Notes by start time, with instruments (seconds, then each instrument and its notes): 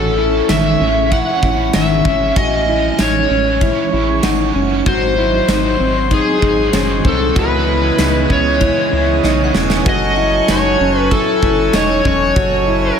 Already playing: analog synth bass A1, overdriven electric guitar A2 E3 C#4 E4, pipe organ C#4, clean electric guitar F#4, electric slide guitar A4
0.17 overdriven electric guitar C#4 E4, clean electric guitar E4
0.48 analog synth bass A1, overdriven electric guitar A2 E3 G#3 C#4, clean electric guitar D#3, electric slide guitar E5, snare, ride, tambourine
0.79 analog synth bass A1, overdriven electric guitar G#3 C#4 E4, clean electric guitar C#4
1.10 overdriven electric guitar E3 G#3 C#4 E4, clean electric guitar E4, synth bell E5, electric slide guitar F#5, kick, ride
1.42 analog synth bass A1, overdriven electric guitar G#3 C#4 E4, clean electric guitar E4, kick
1.73 analog synth bass G#1, clean electric guitar D#3, overdriven electric guitar E3 G#3 C#4, electric slide guitar E5, snare, ride, tambourine
2.04 analog synth bass G#1, overdriven electric guitar G#3 C#4 E4, clean electric guitar C#4, kick
2.36 analog synth bass A1, overdriven electric guitar A2 E3 G#3 C#4 E4, clean electric guitar F#4, electric slide guitar D#5, synth bell G#5, kick, ride
2.66 overdriven electric guitar G#3 C#4 E4, clean electric guitar E4
2.98 analog synth bass A1, overdriven electric guitar A2 E3 G#3 C#4 E4, clean electric guitar D#4, electric slide guitar C#5, snare, ride, tambourine
3.29 analog synth bass A1, overdriven electric guitar G#3 C#4 E4, clean electric guitar C#4
3.60 overdriven electric guitar E3 G#3 C#4 E4, clean electric guitar E4, kick, ride
3.91 analog synth bass A1, overdriven electric guitar G#3 C#4 E4, clean electric guitar E4
4.23 analog synth bass G#1, overdriven electric guitar E3 G#3 C#4 E4, clean electric guitar D#4, synth bell F#5, snare, ride, tambourine
4.54 analog synth bass F#1, overdriven electric guitar G#3 C#4 E4, clean electric guitar C#4
4.86 analog synth bass G#1, overdriven electric guitar G#2 D#3 F#3 C4 D#4, pipe organ F#3 C5, clean electric guitar F#4, electric slide guitar C5, kick, ride
5.17 overdriven electric guitar F#3 C4 D#4, clean electric guitar E4
5.48 analog synth bass G#1, overdriven electric guitar G#2 D#3 F#3 C4 D#4, clean electric guitar D#4, snare, ride, tambourine
5.79 analog synth bass G#1, overdriven electric guitar F#3 C4 D#4, clean electric guitar C4
6.11 overdriven electric guitar D#3 F#3 C4 D#4, clean electric guitar D#4, electric slide guitar G#4, kick, ride
6.42 analog synth bass G#1, overdriven electric guitar F#3 C4 D#4, clean electric guitar D#4, kick
6.73 analog synth bass F#1, overdriven electric guitar G#2 D#3 F#3 C4 D#4, clean electric guitar C#4, snare, ride, tambourine
7.04 analog synth bass C2, overdriven electric guitar F#3 C4 D#4, clean electric guitar C4, electric slide guitar A4, kick
7.35 analog synth bass C#2, overdriven electric guitar C#3 G#3 B3 E4, pipe organ C#3 E3 G#3 B3 D#5, clean electric guitar F#4, electric slide guitar B4, kick, ride
7.67 overdriven electric guitar G#3 B3 E4, clean electric guitar E4
7.98 analog synth bass C#2, overdriven electric guitar C#3 G#3 B3 E4, clean electric guitar D#4, snare, ride, tambourine
8.29 analog synth bass C#2, overdriven electric guitar G#3 B3 E4, clean electric guitar C#4, electric slide guitar C#5, kick
8.60 overdriven electric guitar C#3 G#3 B3 E4, clean electric guitar E4, kick, ride
8.91 analog synth bass C#2, overdriven electric guitar G#3 B3 E4, clean electric guitar E4
9.23 analog synth bass B1, overdriven electric guitar C#3 G#3 B3 E4, clean electric guitar D#4, synth bell D#5, snare
9.44 synth bell F#5
9.54 analog synth bass E1, overdriven electric guitar G#3 B3 E4, clean electric guitar C#4, snare
9.63 synth bell G#5
9.70 snare
9.86 analog synth bass F#1, pipe organ F#3 C#4 F#4 A4 G#5, clean electric guitar F#4, electric slide guitar D#5, kick, ride
10.16 clean electric guitar E4, synth bell F#5
10.48 analog synth bass F#1, clean electric guitar D#4, electric slide guitar C#5, snare, ride, tambourine
10.79 analog synth bass F#1, clean electric guitar C#4, synth bell G#5
10.99 electric slide guitar B4
11.11 clean electric guitar E4, electric slide guitar A4, kick, ride
11.43 analog synth bass F#1, clean electric guitar E4, kick
11.73 analog synth bass E1, clean electric guitar D#4, electric slide guitar C#5, synth bell D#5, snare, ride, tambourine
12.05 analog synth bass E1, clean electric guitar C#4, electric slide guitar C#5, kick
12.36 analog synth bass F#1, clean electric guitar F#4, kick, ride
12.68 clean electric guitar E4